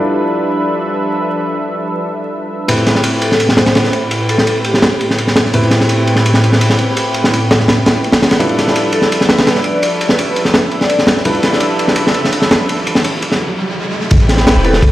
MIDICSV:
0, 0, Header, 1, 7, 480
1, 0, Start_track
1, 0, Key_signature, 0, "minor"
1, 0, Tempo, 357143
1, 1684, Time_signature, 4, 2, 24, 8
1, 20050, End_track
2, 0, Start_track
2, 0, Title_t, "Vibraphone"
2, 0, Program_c, 0, 11
2, 4326, Note_on_c, 0, 69, 75
2, 4614, Note_off_c, 0, 69, 0
2, 4809, Note_on_c, 0, 72, 74
2, 4885, Note_off_c, 0, 72, 0
2, 4927, Note_on_c, 0, 72, 66
2, 5002, Note_off_c, 0, 72, 0
2, 5771, Note_on_c, 0, 69, 83
2, 6057, Note_off_c, 0, 69, 0
2, 6251, Note_on_c, 0, 67, 76
2, 6727, Note_off_c, 0, 67, 0
2, 12004, Note_on_c, 0, 69, 78
2, 12293, Note_off_c, 0, 69, 0
2, 12492, Note_on_c, 0, 71, 80
2, 12567, Note_off_c, 0, 71, 0
2, 12612, Note_on_c, 0, 71, 69
2, 12685, Note_off_c, 0, 71, 0
2, 12973, Note_on_c, 0, 74, 80
2, 13258, Note_off_c, 0, 74, 0
2, 13573, Note_on_c, 0, 71, 77
2, 13857, Note_off_c, 0, 71, 0
2, 14531, Note_on_c, 0, 74, 80
2, 14886, Note_off_c, 0, 74, 0
2, 19683, Note_on_c, 0, 69, 87
2, 19973, Note_off_c, 0, 69, 0
2, 20050, End_track
3, 0, Start_track
3, 0, Title_t, "Analog synth pad"
3, 0, Program_c, 1, 89
3, 0, Note_on_c, 1, 53, 75
3, 0, Note_on_c, 1, 55, 81
3, 0, Note_on_c, 1, 62, 74
3, 0, Note_on_c, 1, 69, 74
3, 0, Note_on_c, 1, 71, 90
3, 0, Note_on_c, 1, 76, 75
3, 3573, Note_off_c, 1, 55, 0
3, 3574, Note_off_c, 1, 53, 0
3, 3574, Note_off_c, 1, 62, 0
3, 3574, Note_off_c, 1, 69, 0
3, 3574, Note_off_c, 1, 71, 0
3, 3574, Note_off_c, 1, 76, 0
3, 3605, Note_on_c, 1, 64, 77
3, 3606, Note_on_c, 1, 67, 74
3, 3607, Note_on_c, 1, 45, 84
3, 3607, Note_on_c, 1, 60, 76
3, 3607, Note_on_c, 1, 71, 88
3, 7416, Note_off_c, 1, 64, 0
3, 7417, Note_off_c, 1, 45, 0
3, 7417, Note_off_c, 1, 60, 0
3, 7417, Note_off_c, 1, 67, 0
3, 7417, Note_off_c, 1, 71, 0
3, 7443, Note_on_c, 1, 67, 78
3, 7445, Note_on_c, 1, 45, 78
3, 7445, Note_on_c, 1, 60, 79
3, 7445, Note_on_c, 1, 64, 73
3, 7447, Note_on_c, 1, 71, 86
3, 11256, Note_off_c, 1, 60, 0
3, 11256, Note_off_c, 1, 67, 0
3, 11257, Note_off_c, 1, 45, 0
3, 11257, Note_off_c, 1, 64, 0
3, 11257, Note_off_c, 1, 71, 0
3, 11287, Note_on_c, 1, 53, 74
3, 11287, Note_on_c, 1, 55, 86
3, 11287, Note_on_c, 1, 76, 74
3, 11289, Note_on_c, 1, 69, 74
3, 11289, Note_on_c, 1, 71, 88
3, 11291, Note_on_c, 1, 62, 71
3, 15097, Note_off_c, 1, 55, 0
3, 15098, Note_off_c, 1, 53, 0
3, 15098, Note_off_c, 1, 69, 0
3, 15098, Note_off_c, 1, 71, 0
3, 15098, Note_off_c, 1, 76, 0
3, 15099, Note_off_c, 1, 62, 0
3, 15126, Note_on_c, 1, 53, 77
3, 15126, Note_on_c, 1, 55, 86
3, 15126, Note_on_c, 1, 69, 80
3, 15126, Note_on_c, 1, 71, 90
3, 15127, Note_on_c, 1, 76, 76
3, 15129, Note_on_c, 1, 62, 78
3, 18005, Note_off_c, 1, 53, 0
3, 18005, Note_off_c, 1, 55, 0
3, 18005, Note_off_c, 1, 69, 0
3, 18005, Note_off_c, 1, 71, 0
3, 18005, Note_off_c, 1, 76, 0
3, 18007, Note_off_c, 1, 62, 0
3, 18960, Note_on_c, 1, 64, 89
3, 18960, Note_on_c, 1, 67, 85
3, 18961, Note_on_c, 1, 71, 99
3, 18962, Note_on_c, 1, 60, 99
3, 20050, Note_off_c, 1, 60, 0
3, 20050, Note_off_c, 1, 64, 0
3, 20050, Note_off_c, 1, 67, 0
3, 20050, Note_off_c, 1, 71, 0
3, 20050, End_track
4, 0, Start_track
4, 0, Title_t, "Grand piano"
4, 0, Program_c, 2, 0
4, 0, Note_on_c, 2, 55, 70
4, 0, Note_on_c, 2, 62, 64
4, 0, Note_on_c, 2, 64, 64
4, 0, Note_on_c, 2, 65, 62
4, 0, Note_on_c, 2, 69, 64
4, 0, Note_on_c, 2, 71, 75
4, 3576, Note_off_c, 2, 62, 0
4, 3577, Note_off_c, 2, 55, 0
4, 3577, Note_off_c, 2, 64, 0
4, 3577, Note_off_c, 2, 65, 0
4, 3577, Note_off_c, 2, 69, 0
4, 3578, Note_off_c, 2, 71, 0
4, 3604, Note_on_c, 2, 64, 62
4, 3605, Note_on_c, 2, 45, 65
4, 3605, Note_on_c, 2, 60, 64
4, 3605, Note_on_c, 2, 67, 64
4, 3605, Note_on_c, 2, 71, 76
4, 7416, Note_off_c, 2, 45, 0
4, 7416, Note_off_c, 2, 60, 0
4, 7416, Note_off_c, 2, 64, 0
4, 7416, Note_off_c, 2, 67, 0
4, 7416, Note_off_c, 2, 71, 0
4, 7442, Note_on_c, 2, 60, 67
4, 7442, Note_on_c, 2, 67, 65
4, 7442, Note_on_c, 2, 71, 78
4, 7443, Note_on_c, 2, 45, 69
4, 7443, Note_on_c, 2, 64, 66
4, 11255, Note_off_c, 2, 45, 0
4, 11255, Note_off_c, 2, 60, 0
4, 11255, Note_off_c, 2, 67, 0
4, 11255, Note_off_c, 2, 71, 0
4, 11256, Note_off_c, 2, 64, 0
4, 11281, Note_on_c, 2, 69, 63
4, 11282, Note_on_c, 2, 55, 70
4, 11282, Note_on_c, 2, 62, 64
4, 11282, Note_on_c, 2, 64, 64
4, 11282, Note_on_c, 2, 71, 76
4, 11283, Note_on_c, 2, 65, 67
4, 15095, Note_off_c, 2, 55, 0
4, 15095, Note_off_c, 2, 62, 0
4, 15095, Note_off_c, 2, 64, 0
4, 15095, Note_off_c, 2, 65, 0
4, 15095, Note_off_c, 2, 69, 0
4, 15095, Note_off_c, 2, 71, 0
4, 15124, Note_on_c, 2, 64, 65
4, 15124, Note_on_c, 2, 65, 64
4, 15124, Note_on_c, 2, 71, 81
4, 15125, Note_on_c, 2, 55, 72
4, 15125, Note_on_c, 2, 69, 66
4, 15126, Note_on_c, 2, 62, 68
4, 18004, Note_off_c, 2, 64, 0
4, 18004, Note_off_c, 2, 65, 0
4, 18004, Note_off_c, 2, 69, 0
4, 18004, Note_off_c, 2, 71, 0
4, 18005, Note_off_c, 2, 55, 0
4, 18005, Note_off_c, 2, 62, 0
4, 19681, Note_on_c, 2, 60, 75
4, 19681, Note_on_c, 2, 67, 65
4, 19683, Note_on_c, 2, 64, 69
4, 19684, Note_on_c, 2, 71, 83
4, 19779, Note_off_c, 2, 60, 0
4, 19779, Note_off_c, 2, 67, 0
4, 19780, Note_off_c, 2, 64, 0
4, 19781, Note_off_c, 2, 71, 0
4, 20050, End_track
5, 0, Start_track
5, 0, Title_t, "Sub bass"
5, 0, Program_c, 3, 38
5, 18969, Note_on_c, 3, 33, 101
5, 19550, Note_off_c, 3, 33, 0
5, 19562, Note_on_c, 3, 28, 84
5, 19903, Note_off_c, 3, 28, 0
5, 19922, Note_on_c, 3, 33, 78
5, 20034, Note_off_c, 3, 33, 0
5, 20050, End_track
6, 0, Start_track
6, 0, Title_t, "Riser"
6, 0, Program_c, 4, 103
6, 15123, Note_on_c, 4, 60, 73
6, 18964, Note_off_c, 4, 60, 0
6, 20050, End_track
7, 0, Start_track
7, 0, Title_t, "Drums"
7, 3608, Note_on_c, 9, 51, 84
7, 3729, Note_off_c, 9, 51, 0
7, 3729, Note_on_c, 9, 51, 35
7, 3850, Note_off_c, 9, 51, 0
7, 3850, Note_on_c, 9, 51, 56
7, 3854, Note_on_c, 9, 38, 36
7, 3970, Note_off_c, 9, 38, 0
7, 3970, Note_on_c, 9, 38, 34
7, 3984, Note_off_c, 9, 51, 0
7, 4079, Note_on_c, 9, 51, 82
7, 4104, Note_off_c, 9, 38, 0
7, 4213, Note_off_c, 9, 51, 0
7, 4321, Note_on_c, 9, 51, 61
7, 4455, Note_off_c, 9, 51, 0
7, 4458, Note_on_c, 9, 38, 36
7, 4566, Note_on_c, 9, 51, 77
7, 4592, Note_off_c, 9, 38, 0
7, 4686, Note_on_c, 9, 38, 42
7, 4701, Note_off_c, 9, 51, 0
7, 4797, Note_off_c, 9, 38, 0
7, 4797, Note_on_c, 9, 38, 95
7, 4801, Note_on_c, 9, 51, 63
7, 4921, Note_off_c, 9, 51, 0
7, 4921, Note_on_c, 9, 51, 66
7, 4923, Note_off_c, 9, 38, 0
7, 4923, Note_on_c, 9, 38, 98
7, 5039, Note_off_c, 9, 51, 0
7, 5039, Note_on_c, 9, 51, 68
7, 5046, Note_off_c, 9, 38, 0
7, 5046, Note_on_c, 9, 38, 85
7, 5158, Note_off_c, 9, 38, 0
7, 5158, Note_on_c, 9, 38, 40
7, 5174, Note_off_c, 9, 51, 0
7, 5281, Note_on_c, 9, 51, 63
7, 5292, Note_off_c, 9, 38, 0
7, 5415, Note_off_c, 9, 51, 0
7, 5522, Note_on_c, 9, 51, 78
7, 5656, Note_off_c, 9, 51, 0
7, 5765, Note_on_c, 9, 51, 63
7, 5891, Note_on_c, 9, 38, 47
7, 5900, Note_off_c, 9, 51, 0
7, 6007, Note_on_c, 9, 51, 76
7, 6026, Note_off_c, 9, 38, 0
7, 6141, Note_off_c, 9, 51, 0
7, 6241, Note_on_c, 9, 51, 60
7, 6370, Note_on_c, 9, 38, 38
7, 6376, Note_off_c, 9, 51, 0
7, 6483, Note_off_c, 9, 38, 0
7, 6483, Note_on_c, 9, 38, 94
7, 6483, Note_on_c, 9, 51, 68
7, 6617, Note_off_c, 9, 38, 0
7, 6618, Note_off_c, 9, 51, 0
7, 6727, Note_on_c, 9, 51, 58
7, 6860, Note_on_c, 9, 38, 33
7, 6862, Note_off_c, 9, 51, 0
7, 6966, Note_on_c, 9, 51, 67
7, 6994, Note_off_c, 9, 38, 0
7, 7088, Note_on_c, 9, 38, 36
7, 7101, Note_off_c, 9, 51, 0
7, 7199, Note_off_c, 9, 38, 0
7, 7199, Note_on_c, 9, 38, 86
7, 7207, Note_on_c, 9, 51, 74
7, 7332, Note_off_c, 9, 38, 0
7, 7332, Note_on_c, 9, 38, 32
7, 7342, Note_off_c, 9, 51, 0
7, 7438, Note_on_c, 9, 51, 81
7, 7466, Note_off_c, 9, 38, 0
7, 7571, Note_off_c, 9, 51, 0
7, 7571, Note_on_c, 9, 51, 38
7, 7669, Note_on_c, 9, 38, 42
7, 7675, Note_off_c, 9, 51, 0
7, 7675, Note_on_c, 9, 51, 57
7, 7803, Note_off_c, 9, 38, 0
7, 7803, Note_on_c, 9, 38, 35
7, 7809, Note_off_c, 9, 51, 0
7, 7918, Note_on_c, 9, 51, 80
7, 7937, Note_off_c, 9, 38, 0
7, 8052, Note_off_c, 9, 51, 0
7, 8162, Note_on_c, 9, 51, 55
7, 8274, Note_on_c, 9, 38, 33
7, 8297, Note_off_c, 9, 51, 0
7, 8408, Note_on_c, 9, 51, 77
7, 8409, Note_off_c, 9, 38, 0
7, 8518, Note_on_c, 9, 38, 39
7, 8543, Note_off_c, 9, 51, 0
7, 8651, Note_on_c, 9, 51, 54
7, 8653, Note_off_c, 9, 38, 0
7, 8769, Note_on_c, 9, 38, 36
7, 8785, Note_off_c, 9, 51, 0
7, 8883, Note_on_c, 9, 51, 87
7, 8903, Note_off_c, 9, 38, 0
7, 9000, Note_on_c, 9, 38, 41
7, 9017, Note_off_c, 9, 51, 0
7, 9119, Note_on_c, 9, 51, 56
7, 9135, Note_off_c, 9, 38, 0
7, 9253, Note_off_c, 9, 51, 0
7, 9362, Note_on_c, 9, 51, 70
7, 9496, Note_off_c, 9, 51, 0
7, 9598, Note_on_c, 9, 51, 54
7, 9731, Note_on_c, 9, 38, 52
7, 9732, Note_off_c, 9, 51, 0
7, 9857, Note_on_c, 9, 51, 75
7, 9865, Note_off_c, 9, 38, 0
7, 9992, Note_off_c, 9, 51, 0
7, 10090, Note_on_c, 9, 51, 66
7, 10092, Note_on_c, 9, 38, 96
7, 10214, Note_off_c, 9, 38, 0
7, 10214, Note_on_c, 9, 38, 37
7, 10224, Note_off_c, 9, 51, 0
7, 10325, Note_off_c, 9, 38, 0
7, 10325, Note_on_c, 9, 38, 98
7, 10329, Note_on_c, 9, 51, 63
7, 10459, Note_off_c, 9, 38, 0
7, 10463, Note_off_c, 9, 51, 0
7, 10564, Note_on_c, 9, 51, 73
7, 10569, Note_on_c, 9, 38, 83
7, 10698, Note_off_c, 9, 51, 0
7, 10704, Note_off_c, 9, 38, 0
7, 10807, Note_on_c, 9, 51, 50
7, 10920, Note_on_c, 9, 38, 87
7, 10928, Note_off_c, 9, 51, 0
7, 10928, Note_on_c, 9, 51, 75
7, 11052, Note_off_c, 9, 38, 0
7, 11052, Note_on_c, 9, 38, 89
7, 11055, Note_off_c, 9, 51, 0
7, 11055, Note_on_c, 9, 51, 73
7, 11166, Note_off_c, 9, 51, 0
7, 11166, Note_on_c, 9, 51, 74
7, 11174, Note_off_c, 9, 38, 0
7, 11174, Note_on_c, 9, 38, 101
7, 11290, Note_off_c, 9, 51, 0
7, 11290, Note_on_c, 9, 51, 80
7, 11308, Note_off_c, 9, 38, 0
7, 11412, Note_off_c, 9, 51, 0
7, 11412, Note_on_c, 9, 51, 37
7, 11538, Note_off_c, 9, 51, 0
7, 11538, Note_on_c, 9, 38, 36
7, 11538, Note_on_c, 9, 51, 62
7, 11660, Note_off_c, 9, 38, 0
7, 11660, Note_on_c, 9, 38, 33
7, 11672, Note_off_c, 9, 51, 0
7, 11767, Note_on_c, 9, 51, 80
7, 11794, Note_off_c, 9, 38, 0
7, 11902, Note_off_c, 9, 51, 0
7, 11993, Note_on_c, 9, 51, 63
7, 12119, Note_on_c, 9, 38, 36
7, 12128, Note_off_c, 9, 51, 0
7, 12253, Note_off_c, 9, 38, 0
7, 12255, Note_on_c, 9, 51, 76
7, 12377, Note_on_c, 9, 38, 41
7, 12390, Note_off_c, 9, 51, 0
7, 12484, Note_off_c, 9, 38, 0
7, 12484, Note_on_c, 9, 38, 93
7, 12487, Note_on_c, 9, 51, 67
7, 12611, Note_off_c, 9, 51, 0
7, 12611, Note_on_c, 9, 51, 70
7, 12615, Note_off_c, 9, 38, 0
7, 12615, Note_on_c, 9, 38, 94
7, 12726, Note_off_c, 9, 38, 0
7, 12726, Note_on_c, 9, 38, 87
7, 12728, Note_off_c, 9, 51, 0
7, 12728, Note_on_c, 9, 51, 63
7, 12838, Note_off_c, 9, 38, 0
7, 12838, Note_on_c, 9, 38, 38
7, 12862, Note_off_c, 9, 51, 0
7, 12955, Note_on_c, 9, 51, 59
7, 12972, Note_off_c, 9, 38, 0
7, 13089, Note_off_c, 9, 51, 0
7, 13206, Note_on_c, 9, 51, 81
7, 13341, Note_off_c, 9, 51, 0
7, 13451, Note_on_c, 9, 51, 56
7, 13563, Note_on_c, 9, 38, 57
7, 13585, Note_off_c, 9, 51, 0
7, 13689, Note_on_c, 9, 51, 86
7, 13697, Note_off_c, 9, 38, 0
7, 13824, Note_off_c, 9, 51, 0
7, 13925, Note_on_c, 9, 51, 60
7, 14045, Note_on_c, 9, 38, 40
7, 14060, Note_off_c, 9, 51, 0
7, 14163, Note_off_c, 9, 38, 0
7, 14163, Note_on_c, 9, 38, 95
7, 14165, Note_on_c, 9, 51, 63
7, 14298, Note_off_c, 9, 38, 0
7, 14300, Note_off_c, 9, 51, 0
7, 14398, Note_on_c, 9, 51, 52
7, 14529, Note_on_c, 9, 38, 37
7, 14533, Note_off_c, 9, 51, 0
7, 14642, Note_on_c, 9, 51, 70
7, 14663, Note_off_c, 9, 38, 0
7, 14763, Note_on_c, 9, 38, 35
7, 14776, Note_off_c, 9, 51, 0
7, 14876, Note_off_c, 9, 38, 0
7, 14876, Note_on_c, 9, 38, 92
7, 14890, Note_on_c, 9, 51, 66
7, 15010, Note_off_c, 9, 38, 0
7, 15010, Note_on_c, 9, 38, 35
7, 15024, Note_off_c, 9, 51, 0
7, 15120, Note_on_c, 9, 51, 79
7, 15144, Note_off_c, 9, 38, 0
7, 15248, Note_off_c, 9, 51, 0
7, 15248, Note_on_c, 9, 51, 35
7, 15359, Note_off_c, 9, 51, 0
7, 15359, Note_on_c, 9, 51, 61
7, 15368, Note_on_c, 9, 38, 39
7, 15494, Note_off_c, 9, 38, 0
7, 15494, Note_off_c, 9, 51, 0
7, 15494, Note_on_c, 9, 38, 34
7, 15594, Note_on_c, 9, 51, 78
7, 15629, Note_off_c, 9, 38, 0
7, 15728, Note_off_c, 9, 51, 0
7, 15847, Note_on_c, 9, 51, 59
7, 15965, Note_on_c, 9, 38, 38
7, 15981, Note_off_c, 9, 51, 0
7, 16070, Note_on_c, 9, 51, 80
7, 16099, Note_off_c, 9, 38, 0
7, 16204, Note_off_c, 9, 51, 0
7, 16220, Note_on_c, 9, 38, 43
7, 16318, Note_on_c, 9, 51, 57
7, 16354, Note_off_c, 9, 38, 0
7, 16452, Note_off_c, 9, 51, 0
7, 16458, Note_on_c, 9, 38, 34
7, 16563, Note_on_c, 9, 51, 71
7, 16592, Note_off_c, 9, 38, 0
7, 16689, Note_on_c, 9, 38, 45
7, 16698, Note_off_c, 9, 51, 0
7, 16812, Note_on_c, 9, 51, 67
7, 16814, Note_off_c, 9, 38, 0
7, 16814, Note_on_c, 9, 38, 101
7, 16946, Note_off_c, 9, 51, 0
7, 16948, Note_off_c, 9, 38, 0
7, 17055, Note_on_c, 9, 51, 74
7, 17190, Note_off_c, 9, 51, 0
7, 17293, Note_on_c, 9, 51, 69
7, 17409, Note_on_c, 9, 38, 56
7, 17428, Note_off_c, 9, 51, 0
7, 17530, Note_on_c, 9, 51, 86
7, 17543, Note_off_c, 9, 38, 0
7, 17664, Note_off_c, 9, 51, 0
7, 17772, Note_on_c, 9, 51, 60
7, 17898, Note_on_c, 9, 38, 42
7, 17906, Note_off_c, 9, 51, 0
7, 18032, Note_off_c, 9, 38, 0
7, 18959, Note_on_c, 9, 51, 83
7, 18968, Note_on_c, 9, 36, 98
7, 19085, Note_off_c, 9, 51, 0
7, 19085, Note_on_c, 9, 51, 44
7, 19103, Note_off_c, 9, 36, 0
7, 19204, Note_on_c, 9, 38, 42
7, 19207, Note_off_c, 9, 51, 0
7, 19207, Note_on_c, 9, 51, 70
7, 19314, Note_off_c, 9, 38, 0
7, 19314, Note_on_c, 9, 38, 42
7, 19341, Note_off_c, 9, 51, 0
7, 19446, Note_off_c, 9, 38, 0
7, 19446, Note_on_c, 9, 38, 119
7, 19447, Note_on_c, 9, 51, 92
7, 19580, Note_off_c, 9, 38, 0
7, 19581, Note_off_c, 9, 51, 0
7, 19679, Note_on_c, 9, 51, 62
7, 19800, Note_on_c, 9, 38, 45
7, 19814, Note_off_c, 9, 51, 0
7, 19924, Note_on_c, 9, 36, 104
7, 19926, Note_on_c, 9, 51, 89
7, 19935, Note_off_c, 9, 38, 0
7, 20050, Note_off_c, 9, 36, 0
7, 20050, Note_off_c, 9, 51, 0
7, 20050, End_track
0, 0, End_of_file